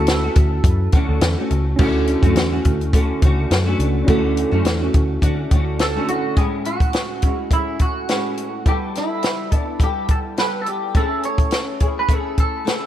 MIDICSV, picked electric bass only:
0, 0, Header, 1, 3, 480
1, 0, Start_track
1, 0, Tempo, 572519
1, 1498, Time_signature, 4, 2, 24, 8
1, 10784, End_track
2, 0, Start_track
2, 0, Title_t, "Picked electric bass"
2, 0, Program_c, 0, 34
2, 0, Note_on_c, 0, 38, 96
2, 230, Note_off_c, 0, 38, 0
2, 305, Note_on_c, 0, 38, 86
2, 494, Note_off_c, 0, 38, 0
2, 536, Note_on_c, 0, 42, 87
2, 729, Note_off_c, 0, 42, 0
2, 912, Note_on_c, 0, 38, 82
2, 998, Note_off_c, 0, 38, 0
2, 1019, Note_on_c, 0, 40, 99
2, 1125, Note_off_c, 0, 40, 0
2, 1264, Note_on_c, 0, 37, 92
2, 1454, Note_off_c, 0, 37, 0
2, 1498, Note_on_c, 0, 38, 97
2, 1796, Note_off_c, 0, 38, 0
2, 1870, Note_on_c, 0, 42, 84
2, 1956, Note_off_c, 0, 42, 0
2, 1974, Note_on_c, 0, 40, 93
2, 2167, Note_off_c, 0, 40, 0
2, 2224, Note_on_c, 0, 38, 86
2, 2605, Note_off_c, 0, 38, 0
2, 2702, Note_on_c, 0, 37, 82
2, 2892, Note_off_c, 0, 37, 0
2, 2940, Note_on_c, 0, 42, 92
2, 3131, Note_off_c, 0, 42, 0
2, 3176, Note_on_c, 0, 37, 90
2, 3368, Note_off_c, 0, 37, 0
2, 3417, Note_on_c, 0, 38, 99
2, 3715, Note_off_c, 0, 38, 0
2, 3792, Note_on_c, 0, 42, 88
2, 3878, Note_off_c, 0, 42, 0
2, 3893, Note_on_c, 0, 40, 82
2, 4087, Note_off_c, 0, 40, 0
2, 4145, Note_on_c, 0, 38, 88
2, 4334, Note_off_c, 0, 38, 0
2, 4377, Note_on_c, 0, 50, 93
2, 4569, Note_off_c, 0, 50, 0
2, 4623, Note_on_c, 0, 38, 71
2, 5005, Note_off_c, 0, 38, 0
2, 10784, End_track
3, 0, Start_track
3, 0, Title_t, "Muted picked electric bass strokes"
3, 782, Note_on_c, 9, 29, 43
3, 866, Note_off_c, 9, 29, 0
3, 10784, End_track
0, 0, End_of_file